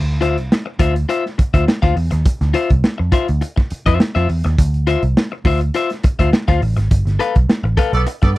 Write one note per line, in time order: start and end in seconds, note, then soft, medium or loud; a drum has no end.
0.00 0.38 D2 medium
0.21 0.36 F4 medium
0.21 0.36 C5 medium
0.21 0.36 E5 medium
0.21 closed hi-hat medium
0.38 0.49 C2 medium
0.38 closed hi-hat soft
0.52 snare loud
0.66 muted clean electric guitar stroke medium
0.79 1.04 D2 medium
0.79 0.94 F4 medium
0.79 0.94 C5 medium
0.79 0.94 E5 loud
0.79 kick loud
0.79 closed hi-hat medium
0.95 muted clean electric guitar stroke soft
0.95 closed hi-hat medium
1.09 1.23 F4 medium
1.09 1.24 C5 loud
1.09 1.24 E5 loud
1.09 closed hi-hat medium
1.26 snare soft
1.38 muted clean electric guitar stroke soft
1.38 muted picked electric bass stroke soft
1.38 kick loud
1.38 closed hi-hat medium
1.54 1.65 D2 loud
1.54 1.64 F4 medium
1.54 1.64 C5 medium
1.54 1.64 E5 medium
1.54 kick medium
1.54 closed hi-hat medium
1.68 muted clean electric guitar stroke soft
1.68 snare loud
1.82 1.94 D2 medium
1.82 1.95 F4 medium
1.82 1.95 C5 medium
1.82 1.95 F5 medium
1.82 kick medium
1.82 snare soft
1.82 closed hi-hat soft
1.96 2.09 E2 medium
1.96 muted clean electric guitar stroke soft
1.96 open hi-hat medium
2.11 2.24 D#2 medium
2.11 muted clean electric guitar stroke soft
2.11 snare soft
2.11 closed hi-hat medium
2.25 kick loud
2.25 closed hi-hat loud
2.41 2.52 D2 loud
2.41 snare soft
2.41 closed hi-hat soft
2.54 2.69 F4 medium
2.54 2.69 C5 loud
2.54 2.69 E5 medium
2.54 closed hi-hat medium
2.70 2.82 C2 loud
2.70 kick medium
2.70 closed hi-hat soft
2.84 muted picked electric bass stroke medium
2.84 snare loud
2.98 3.11 F2 medium
2.98 muted clean electric guitar stroke soft
3.12 3.27 F4 medium
3.12 3.27 C5 medium
3.12 3.27 E5 medium
3.12 kick loud
3.12 closed hi-hat medium
3.28 3.40 D2 medium
3.28 muted clean electric guitar stroke soft
3.28 closed hi-hat medium
3.41 muted clean electric guitar stroke soft
3.41 closed hi-hat medium
3.56 muted clean electric guitar stroke soft
3.56 kick medium
3.56 snare soft
3.70 muted picked electric bass stroke soft
3.70 closed hi-hat medium
3.86 3.98 F2 medium
3.86 3.98 F4 medium
3.86 3.99 C5 medium
3.86 3.99 E5 medium
3.86 kick medium
3.86 closed hi-hat medium
3.99 muted clean electric guitar stroke soft
3.99 snare loud
4.15 4.27 F2 loud
4.15 4.28 F4 medium
4.15 4.28 C5 medium
4.15 4.28 E5 medium
4.15 snare soft
4.15 closed hi-hat soft
4.29 4.42 E2 medium
4.29 muted clean electric guitar stroke soft
4.29 open hi-hat medium
4.44 4.56 D#2 loud
4.44 muted clean electric guitar stroke soft
4.44 snare soft
4.44 closed hi-hat medium
4.58 4.96 D2 medium
4.58 kick loud
4.58 closed hi-hat loud
4.74 closed hi-hat soft
4.87 5.01 F4 medium
4.87 5.02 C5 medium
4.87 5.02 E5 loud
4.87 closed hi-hat medium
5.03 5.14 C2 medium
5.03 closed hi-hat soft
5.17 snare loud
5.32 muted clean electric guitar stroke soft
5.45 5.69 D2 loud
5.45 5.60 F4 medium
5.45 5.60 C5 medium
5.45 5.60 E5 medium
5.45 kick loud
5.45 open hi-hat medium
5.61 muted clean electric guitar stroke soft
5.61 closed hi-hat medium
5.74 5.89 F4 medium
5.74 5.89 C5 medium
5.74 5.90 E5 loud
5.74 closed hi-hat medium
5.90 snare soft
5.90 closed hi-hat soft
6.03 muted clean electric guitar stroke soft
6.03 muted picked electric bass stroke soft
6.03 kick loud
6.03 closed hi-hat medium
6.19 6.30 D2 medium
6.19 6.30 F4 medium
6.19 6.29 C5 medium
6.19 6.29 E5 medium
6.19 kick medium
6.19 closed hi-hat medium
6.33 muted clean electric guitar stroke medium
6.33 snare loud
6.48 6.60 D2 medium
6.48 6.61 F4 medium
6.48 6.61 C5 medium
6.48 6.61 F5 medium
6.48 kick medium
6.48 snare soft
6.48 closed hi-hat soft
6.62 6.75 A1 loud
6.62 muted clean electric guitar stroke soft
6.62 open hi-hat medium
6.77 6.89 G#1 medium
6.77 muted clean electric guitar stroke medium
6.77 snare soft
6.77 closed hi-hat medium
6.91 7.04 G1 loud
6.91 kick loud
6.91 closed hi-hat loud
7.05 7.17 G1 medium
7.05 snare soft
7.05 closed hi-hat soft
7.19 7.34 A4 medium
7.19 7.34 B4 loud
7.19 7.35 F5 loud
7.19 closed hi-hat medium
7.35 7.47 B1 loud
7.35 kick medium
7.35 closed hi-hat soft
7.49 muted picked electric bass stroke medium
7.49 snare loud
7.64 7.75 A1 medium
7.64 muted clean electric guitar stroke soft
7.77 7.92 A4 loud
7.77 7.92 B4 loud
7.77 7.92 F5 loud
7.77 kick loud
7.77 closed hi-hat medium
7.93 8.05 B1 medium
7.93 8.02 B3 medium
7.93 8.02 A4 medium
7.93 8.02 D5 medium
7.93 muted clean electric guitar stroke soft
7.93 closed hi-hat medium
8.07 muted clean electric guitar stroke soft
8.07 closed hi-hat medium
8.22 8.34 G2 loud
8.22 8.31 B3 medium
8.22 8.31 A4 medium
8.22 8.31 D5 medium
8.22 muted clean electric guitar stroke soft
8.22 kick medium
8.22 snare soft
8.22 closed hi-hat soft